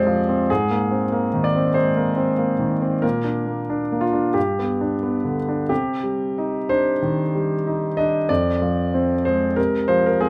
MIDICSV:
0, 0, Header, 1, 2, 480
1, 0, Start_track
1, 0, Key_signature, -3, "minor"
1, 0, Tempo, 635593
1, 372, Time_signature, 4, 2, 24, 8
1, 2294, Tempo, 665188
1, 5174, Tempo, 636267
1, 7636, End_track
2, 0, Start_track
2, 0, Title_t, "Grand piano"
2, 0, Program_c, 0, 0
2, 0, Control_c, 0, 64, 127
2, 0, Note_on_c, 0, 48, 49
2, 0, Note_on_c, 0, 53, 47
2, 0, Note_on_c, 0, 56, 44
2, 0, Note_on_c, 0, 60, 53
2, 0, Note_on_c, 0, 72, 66
2, 0, Note_on_c, 0, 74, 89
2, 51, Note_off_c, 0, 53, 0
2, 51, Note_on_c, 0, 53, 48
2, 153, Note_off_c, 0, 56, 0
2, 218, Note_off_c, 0, 60, 0
2, 218, Note_on_c, 0, 60, 47
2, 306, Note_off_c, 0, 53, 0
2, 374, Note_off_c, 0, 72, 0
2, 375, Note_off_c, 0, 60, 0
2, 379, Note_on_c, 0, 68, 74
2, 386, Control_c, 0, 64, 0
2, 389, Note_on_c, 0, 44, 54
2, 390, Note_off_c, 0, 74, 0
2, 393, Note_off_c, 0, 48, 0
2, 502, Control_c, 0, 64, 127
2, 532, Note_on_c, 0, 58, 40
2, 690, Note_on_c, 0, 60, 41
2, 789, Note_off_c, 0, 58, 0
2, 848, Note_on_c, 0, 58, 51
2, 948, Note_off_c, 0, 60, 0
2, 1010, Note_on_c, 0, 51, 43
2, 1087, Note_on_c, 0, 74, 69
2, 1097, Note_off_c, 0, 68, 0
2, 1107, Note_off_c, 0, 58, 0
2, 1172, Note_on_c, 0, 60, 43
2, 1268, Note_off_c, 0, 51, 0
2, 1313, Note_off_c, 0, 44, 0
2, 1316, Note_on_c, 0, 72, 65
2, 1323, Note_on_c, 0, 56, 45
2, 1330, Note_off_c, 0, 74, 0
2, 1427, Note_off_c, 0, 60, 0
2, 1485, Note_on_c, 0, 58, 46
2, 1582, Note_off_c, 0, 56, 0
2, 1636, Note_on_c, 0, 60, 47
2, 1743, Note_off_c, 0, 58, 0
2, 1797, Note_on_c, 0, 58, 40
2, 1898, Note_off_c, 0, 60, 0
2, 1957, Note_on_c, 0, 51, 39
2, 2059, Note_off_c, 0, 58, 0
2, 2127, Note_on_c, 0, 60, 41
2, 2221, Note_off_c, 0, 51, 0
2, 2280, Note_on_c, 0, 70, 62
2, 2283, Note_off_c, 0, 72, 0
2, 2291, Note_off_c, 0, 60, 0
2, 2292, Note_on_c, 0, 46, 48
2, 2305, Control_c, 0, 64, 0
2, 2406, Control_c, 0, 64, 127
2, 2441, Note_on_c, 0, 62, 35
2, 2602, Note_on_c, 0, 58, 34
2, 2696, Note_off_c, 0, 62, 0
2, 2770, Note_on_c, 0, 62, 46
2, 2856, Note_off_c, 0, 58, 0
2, 2932, Note_on_c, 0, 58, 39
2, 2994, Note_on_c, 0, 65, 55
2, 2996, Note_off_c, 0, 70, 0
2, 3022, Note_off_c, 0, 62, 0
2, 3082, Note_on_c, 0, 62, 38
2, 3185, Note_off_c, 0, 58, 0
2, 3216, Note_off_c, 0, 46, 0
2, 3232, Note_on_c, 0, 67, 57
2, 3238, Note_on_c, 0, 43, 43
2, 3242, Note_off_c, 0, 65, 0
2, 3245, Note_off_c, 0, 62, 0
2, 3260, Control_c, 0, 64, 0
2, 3403, Control_c, 0, 64, 127
2, 3415, Note_on_c, 0, 59, 36
2, 3573, Note_on_c, 0, 62, 40
2, 3669, Note_off_c, 0, 59, 0
2, 3731, Note_on_c, 0, 59, 38
2, 3828, Note_off_c, 0, 62, 0
2, 3886, Note_on_c, 0, 50, 34
2, 3967, Note_off_c, 0, 67, 0
2, 3990, Note_off_c, 0, 59, 0
2, 4061, Note_on_c, 0, 62, 38
2, 4150, Note_off_c, 0, 50, 0
2, 4184, Note_off_c, 0, 43, 0
2, 4210, Note_on_c, 0, 67, 60
2, 4218, Note_on_c, 0, 48, 50
2, 4220, Note_off_c, 0, 62, 0
2, 4228, Control_c, 0, 64, 0
2, 4372, Control_c, 0, 64, 127
2, 4455, Note_on_c, 0, 55, 38
2, 4706, Note_on_c, 0, 63, 43
2, 4844, Note_off_c, 0, 55, 0
2, 4932, Note_on_c, 0, 72, 68
2, 4933, Note_on_c, 0, 62, 40
2, 4937, Note_off_c, 0, 67, 0
2, 5083, Note_off_c, 0, 63, 0
2, 5144, Note_off_c, 0, 48, 0
2, 5171, Note_on_c, 0, 51, 41
2, 5311, Note_off_c, 0, 62, 0
2, 5417, Note_on_c, 0, 55, 42
2, 5552, Note_off_c, 0, 51, 0
2, 5659, Note_on_c, 0, 63, 45
2, 5796, Note_off_c, 0, 55, 0
2, 5884, Note_off_c, 0, 72, 0
2, 5884, Note_on_c, 0, 75, 67
2, 5894, Note_on_c, 0, 62, 41
2, 6037, Note_off_c, 0, 63, 0
2, 6126, Note_off_c, 0, 75, 0
2, 6126, Note_on_c, 0, 74, 76
2, 6131, Note_off_c, 0, 62, 0
2, 6133, Note_on_c, 0, 41, 55
2, 6141, Control_c, 0, 64, 0
2, 6272, Control_c, 0, 64, 127
2, 6374, Note_on_c, 0, 53, 36
2, 6617, Note_on_c, 0, 60, 49
2, 6758, Note_off_c, 0, 53, 0
2, 6851, Note_off_c, 0, 74, 0
2, 6851, Note_on_c, 0, 72, 64
2, 6859, Note_on_c, 0, 56, 40
2, 7001, Note_off_c, 0, 60, 0
2, 7067, Note_off_c, 0, 41, 0
2, 7086, Note_on_c, 0, 70, 69
2, 7092, Note_on_c, 0, 48, 43
2, 7093, Note_off_c, 0, 72, 0
2, 7107, Control_c, 0, 64, 0
2, 7214, Control_c, 0, 64, 127
2, 7241, Note_off_c, 0, 56, 0
2, 7324, Note_on_c, 0, 72, 72
2, 7330, Note_off_c, 0, 70, 0
2, 7331, Note_on_c, 0, 53, 45
2, 7448, Note_off_c, 0, 72, 0
2, 7463, Note_on_c, 0, 70, 61
2, 7476, Note_off_c, 0, 48, 0
2, 7570, Note_on_c, 0, 68, 69
2, 7577, Note_off_c, 0, 70, 0
2, 7581, Note_on_c, 0, 60, 45
2, 7636, Note_off_c, 0, 53, 0
2, 7636, Note_off_c, 0, 60, 0
2, 7636, Note_off_c, 0, 68, 0
2, 7636, End_track
0, 0, End_of_file